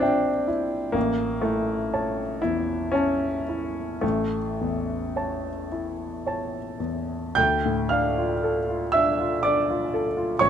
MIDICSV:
0, 0, Header, 1, 2, 480
1, 0, Start_track
1, 0, Key_signature, -1, "minor"
1, 0, Tempo, 952381
1, 482, Time_signature, 3, 2, 24, 8
1, 970, Tempo, 1006711
1, 1450, Tempo, 1104972
1, 3370, Tempo, 1060071
1, 3850, Tempo, 990099
1, 4860, End_track
2, 0, Start_track
2, 0, Title_t, "Grand piano"
2, 0, Program_c, 0, 0
2, 0, Control_c, 0, 64, 127
2, 0, Note_on_c, 0, 34, 52
2, 0, Note_on_c, 0, 46, 38
2, 0, Note_on_c, 0, 60, 73
2, 0, Note_on_c, 0, 62, 66
2, 0, Note_on_c, 0, 64, 39
2, 0, Note_on_c, 0, 76, 39
2, 0, Note_on_c, 0, 79, 41
2, 10, Note_off_c, 0, 76, 0
2, 10, Note_on_c, 0, 76, 39
2, 14, Note_off_c, 0, 79, 0
2, 14, Note_on_c, 0, 79, 39
2, 152, Note_off_c, 0, 46, 0
2, 225, Note_off_c, 0, 76, 0
2, 227, Note_off_c, 0, 79, 0
2, 240, Note_off_c, 0, 62, 0
2, 240, Note_off_c, 0, 64, 0
2, 240, Note_on_c, 0, 64, 41
2, 461, Note_off_c, 0, 34, 0
2, 466, Note_on_c, 0, 58, 74
2, 473, Note_on_c, 0, 33, 47
2, 480, Note_off_c, 0, 64, 0
2, 490, Control_c, 0, 64, 0
2, 494, Note_off_c, 0, 60, 0
2, 557, Control_c, 0, 64, 127
2, 713, Note_on_c, 0, 57, 55
2, 716, Note_off_c, 0, 58, 0
2, 722, Note_on_c, 0, 64, 36
2, 975, Note_on_c, 0, 81, 38
2, 976, Note_on_c, 0, 73, 34
2, 1111, Note_off_c, 0, 64, 0
2, 1191, Note_off_c, 0, 81, 0
2, 1192, Note_off_c, 0, 73, 0
2, 1203, Note_off_c, 0, 57, 0
2, 1205, Note_on_c, 0, 64, 67
2, 1215, Note_on_c, 0, 40, 36
2, 1443, Note_on_c, 0, 61, 71
2, 1449, Note_off_c, 0, 64, 0
2, 1452, Note_on_c, 0, 73, 32
2, 1457, Note_on_c, 0, 81, 38
2, 1590, Note_off_c, 0, 40, 0
2, 1664, Note_off_c, 0, 73, 0
2, 1666, Note_off_c, 0, 81, 0
2, 1692, Note_on_c, 0, 64, 36
2, 1904, Note_off_c, 0, 33, 0
2, 1920, Note_on_c, 0, 57, 57
2, 1921, Note_off_c, 0, 61, 0
2, 1928, Note_on_c, 0, 33, 46
2, 1934, Control_c, 0, 64, 0
2, 2012, Control_c, 0, 64, 127
2, 2079, Note_off_c, 0, 64, 0
2, 2179, Note_on_c, 0, 40, 33
2, 2419, Note_on_c, 0, 73, 31
2, 2422, Note_on_c, 0, 81, 37
2, 2562, Note_off_c, 0, 40, 0
2, 2639, Note_off_c, 0, 73, 0
2, 2640, Note_off_c, 0, 81, 0
2, 2662, Note_on_c, 0, 64, 30
2, 2898, Note_on_c, 0, 73, 32
2, 2902, Note_on_c, 0, 81, 35
2, 3035, Note_off_c, 0, 64, 0
2, 3117, Note_off_c, 0, 73, 0
2, 3119, Note_off_c, 0, 81, 0
2, 3127, Note_off_c, 0, 57, 0
2, 3130, Note_on_c, 0, 40, 32
2, 3356, Note_off_c, 0, 33, 0
2, 3370, Note_on_c, 0, 91, 81
2, 3372, Note_off_c, 0, 40, 0
2, 3376, Note_on_c, 0, 79, 61
2, 3380, Control_c, 0, 64, 0
2, 3381, Note_on_c, 0, 38, 52
2, 3467, Control_c, 0, 64, 127
2, 3507, Note_on_c, 0, 45, 41
2, 3601, Note_off_c, 0, 79, 0
2, 3615, Note_off_c, 0, 91, 0
2, 3615, Note_on_c, 0, 89, 63
2, 3621, Note_on_c, 0, 77, 54
2, 3625, Note_on_c, 0, 62, 44
2, 3694, Note_off_c, 0, 45, 0
2, 3743, Note_on_c, 0, 65, 42
2, 3810, Note_off_c, 0, 62, 0
2, 3862, Note_on_c, 0, 69, 42
2, 3931, Note_off_c, 0, 65, 0
2, 3986, Note_on_c, 0, 65, 41
2, 4054, Note_off_c, 0, 69, 0
2, 4081, Note_off_c, 0, 77, 0
2, 4096, Note_on_c, 0, 88, 72
2, 4097, Note_off_c, 0, 89, 0
2, 4104, Note_on_c, 0, 76, 60
2, 4111, Note_on_c, 0, 62, 43
2, 4175, Note_off_c, 0, 65, 0
2, 4229, Note_on_c, 0, 65, 45
2, 4297, Note_off_c, 0, 62, 0
2, 4325, Note_off_c, 0, 76, 0
2, 4338, Note_off_c, 0, 88, 0
2, 4343, Note_on_c, 0, 86, 76
2, 4351, Note_on_c, 0, 62, 41
2, 4351, Note_on_c, 0, 74, 56
2, 4416, Note_off_c, 0, 65, 0
2, 4473, Note_on_c, 0, 65, 44
2, 4536, Note_off_c, 0, 62, 0
2, 4590, Note_on_c, 0, 69, 45
2, 4655, Note_off_c, 0, 65, 0
2, 4702, Note_on_c, 0, 65, 44
2, 4772, Note_off_c, 0, 69, 0
2, 4798, Note_off_c, 0, 38, 0
2, 4799, Note_off_c, 0, 74, 0
2, 4811, Note_on_c, 0, 85, 83
2, 4815, Note_off_c, 0, 86, 0
2, 4816, Note_off_c, 0, 65, 0
2, 4816, Note_on_c, 0, 73, 61
2, 4819, Control_c, 0, 64, 0
2, 4820, Note_on_c, 0, 33, 50
2, 4860, Note_off_c, 0, 33, 0
2, 4860, Note_off_c, 0, 73, 0
2, 4860, Note_off_c, 0, 85, 0
2, 4860, End_track
0, 0, End_of_file